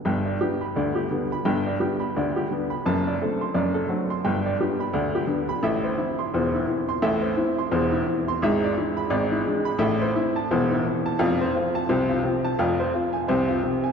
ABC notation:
X:1
M:2/4
L:1/16
Q:"Swing 16ths" 1/4=86
K:G
V:1 name="Upright piano"
g d G b d G D, b | g d G b d G D, b | a d A c' d A F, c' | g d G b d G D, b |
e c E c' c E E, c' | e c E c' c E z c' | e d E b d E ^G, b | e c E a c E z a |
[K:Flyd] f c F a c F C, a | f c F _a c F C, a |]
V:2 name="Upright piano" clef=bass
[G,,,G,,]2 [G,B,D]2 [D,,D,]2 [G,B,D]2 | [G,,,G,,]2 [G,B,D]2 [D,,D,]2 [G,B,D]2 | [F,,,F,,]2 [A,CD]2 [F,,,F,,]2 [A,CD]2 | [G,,,G,,]2 [G,B,D]2 [D,,D,]2 [G,B,D]2 |
[A,,,A,,]2 [E,C]2 [E,,,E,,]2 C2 | [A,,,A,,]2 [E,C]2 [E,,,E,,]2 [E,C]2 | [^G,,,^G,,]2 [E,D]2 [G,,,G,,]2 [E,D]2 | [A,,,A,,]2 [E,C]2 [E,,,E,,]2 [E,C]2 |
[K:Flyd] [F,,,F,,]2 [F,C]2 [C,,C,]2 [F,C]2 | [F,,,F,,]2 [F,C]2 [C,,C,]2 [F,C]2 |]